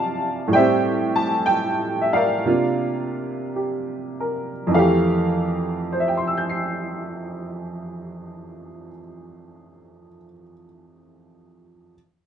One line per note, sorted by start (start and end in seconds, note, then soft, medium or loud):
0.00 0.53 C3 medium
0.00 0.53 A#3 soft
0.00 0.54 D4 soft
0.00 0.54 F4 medium
0.00 0.20 A#4 medium
0.00 0.55 D5 medium
0.00 0.55 F5 medium
0.00 0.55 A5 medium
0.48 2.43 A2 medium
0.48 2.44 G3 medium
0.53 2.46 C4 soft
0.53 2.42 C5 medium
0.53 2.00 E5 medium
0.53 1.16 G5 medium
0.58 2.48 G4 medium
1.16 1.23 A5 medium
1.46 2.02 G5 medium
2.01 2.12 E5 soft
2.13 4.19 A#4 soft
2.13 4.32 D5 soft
2.13 4.30 F5 medium
2.45 4.73 C3 soft
2.45 4.73 A#3 soft
2.45 4.73 D4 soft
2.45 4.74 F4 medium
3.56 4.49 G4 soft
4.20 5.02 A#4 soft
4.67 8.86 F2 medium
4.71 8.90 E3 medium
4.71 8.90 F5 medium
4.75 8.94 A3 medium
4.75 8.98 G4 medium
5.92 10.08 C5 soft
6.00 10.15 E5 soft
6.08 10.23 G5 soft
6.17 10.33 C6 soft
6.27 10.43 E6 soft
6.37 10.53 G6 soft
6.49 10.65 C7 soft